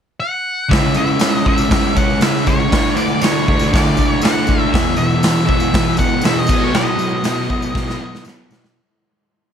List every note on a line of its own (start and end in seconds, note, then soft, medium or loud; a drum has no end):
0.20 0.71 F#5 loud
0.69 0.94 C#3 loud
0.69 0.95 G#3 loud
0.69 0.96 C#4 medium
0.69 0.96 E5 loud
0.69 kick loud
0.69 open hi-hat medium
0.73 snare loud
0.83 tambourine soft
0.94 1.17 C#3 medium
0.94 1.18 G#3 medium
0.94 1.19 C#4 medium
0.94 1.46 E5 medium
0.94 tambourine medium
1.07 tambourine soft
1.19 1.45 C#3 medium
1.19 1.45 G#3 medium
1.19 1.46 C#4 medium
1.19 snare loud
1.19 open hi-hat medium
1.19 tambourine medium
1.46 1.68 C#3 medium
1.46 1.69 G#3 medium
1.46 1.70 C#4 medium
1.46 1.97 E5 medium
1.46 kick medium
1.46 tambourine soft
1.58 tambourine medium
1.70 1.94 C#3 medium
1.70 1.95 G#3 loud
1.70 1.95 C#4 loud
1.70 kick loud
1.70 snare loud
1.70 open hi-hat medium
1.70 tambourine soft
1.83 tambourine soft
1.95 2.20 C#3 medium
1.95 2.21 G#3 medium
1.95 2.22 C#4 medium
1.95 2.22 F#5 medium
1.95 kick medium
1.95 tambourine medium
2.10 tambourine soft
2.21 2.44 C#3 medium
2.21 2.45 G#3 medium
2.21 2.45 C#4 loud
2.21 2.48 E5 loud
2.21 snare loud
2.21 open hi-hat medium
2.21 tambourine medium
2.34 tambourine soft
2.45 2.69 C#3 medium
2.45 2.70 G#3 loud
2.45 2.70 C#4 loud
2.45 2.97 C#5 medium
2.45 kick medium
2.45 tambourine medium
2.60 tambourine soft
2.70 2.94 D3 medium
2.70 2.95 A3 medium
2.70 2.95 D4 loud
2.70 kick loud
2.70 snare loud
2.70 open hi-hat medium
2.84 tambourine soft
2.95 3.20 D3 medium
2.95 3.22 A3 medium
2.95 3.22 D4 loud
2.95 3.23 D5 medium
2.95 tambourine medium
3.10 tambourine soft
3.21 3.46 D3 medium
3.21 3.47 A3 medium
3.21 3.48 D4 medium
3.21 3.73 C#5 medium
3.21 snare loud
3.21 open hi-hat medium
3.21 tambourine loud
3.46 3.71 D3 medium
3.46 3.72 A3 medium
3.46 3.73 D4 loud
3.46 kick medium
3.46 tambourine soft
3.59 tambourine medium
3.72 3.96 D3 loud
3.72 3.97 A3 medium
3.72 3.98 D4 loud
3.72 4.11 D5 loud
3.72 kick loud
3.72 snare loud
3.72 open hi-hat medium
3.72 tambourine soft
3.84 tambourine soft
3.97 4.20 D3 medium
3.97 4.21 A3 medium
3.97 4.22 D4 medium
3.97 kick medium
3.97 tambourine medium
4.11 4.25 C#5 loud
4.21 4.46 D3 medium
4.21 4.47 A3 medium
4.21 4.48 D4 medium
4.21 4.70 F#5 loud
4.21 snare loud
4.21 open hi-hat medium
4.21 tambourine medium
4.47 4.71 D3 medium
4.47 4.72 A3 loud
4.47 4.72 D4 medium
4.47 kick medium
4.47 tambourine medium
4.59 tambourine soft
4.72 4.96 E2 loud
4.72 4.98 B2 loud
4.72 4.98 E3 loud
4.72 4.97 E5 loud
4.72 kick loud
4.72 snare loud
4.72 open hi-hat medium
4.85 tambourine soft
4.96 5.22 E2 medium
4.96 5.23 B2 medium
4.96 5.24 E3 medium
4.96 5.46 E5 loud
4.96 tambourine medium
5.10 tambourine soft
5.23 5.46 E2 medium
5.23 5.47 B2 medium
5.23 5.47 E3 loud
5.23 snare loud
5.23 open hi-hat medium
5.23 tambourine medium
5.47 5.71 E2 medium
5.47 5.72 B2 medium
5.47 5.73 E3 loud
5.47 5.95 E5 medium
5.47 kick medium
5.47 tambourine soft
5.60 tambourine medium
5.72 5.97 E2 loud
5.72 5.98 B2 loud
5.72 5.99 E3 loud
5.72 kick loud
5.72 snare loud
5.72 open hi-hat medium
5.72 tambourine soft
5.84 tambourine soft
5.97 6.22 E2 medium
5.97 6.23 B2 medium
5.97 6.24 E3 medium
5.97 6.25 F#5 medium
5.97 kick medium
5.97 tambourine medium
6.10 tambourine soft
6.21 6.47 E2 medium
6.21 6.48 B2 medium
6.21 6.48 E3 medium
6.21 6.39 E5 medium
6.21 snare loud
6.21 open hi-hat medium
6.21 tambourine medium
6.34 tambourine soft
6.39 6.64 D#5 medium
6.47 6.71 B2 loud
6.47 6.72 F#3 loud
6.47 6.73 B3 loud
6.47 kick loud
6.47 tambourine medium
6.47 crash medium
6.60 6.76 C#5 medium
6.60 tambourine soft
6.72 6.95 B2 medium
6.72 6.97 F#3 loud
6.72 6.98 B3 loud
6.72 8.22 D#5 medium
6.72 snare loud
6.72 tambourine soft
6.86 tambourine soft
6.97 7.22 B2 medium
6.97 7.23 F#3 medium
6.97 7.23 B3 medium
6.97 tambourine medium
7.23 7.48 B2 medium
7.23 7.49 F#3 medium
7.23 7.50 B3 medium
7.23 snare loud
7.23 open hi-hat medium
7.23 tambourine medium
7.49 7.73 B2 medium
7.49 7.74 F#3 medium
7.49 7.75 B3 loud
7.49 kick medium
7.49 tambourine soft
7.62 tambourine medium
7.74 7.99 B2 medium
7.74 7.99 F#3 loud
7.74 8.00 B3 loud
7.74 kick loud
7.74 snare medium
7.87 snare medium
7.87 tambourine soft
8.00 8.23 B2 medium
8.00 8.25 F#3 medium
8.00 8.25 B3 medium
8.15 snare medium
8.25 8.49 B2 medium
8.25 8.50 F#3 medium
8.25 8.50 B3 medium
8.25 snare medium
8.25 tambourine medium
8.50 8.74 B2 medium
8.50 8.75 F#3 medium
8.50 8.75 B3 loud
8.50 snare medium
8.50 tambourine medium
8.64 snare loud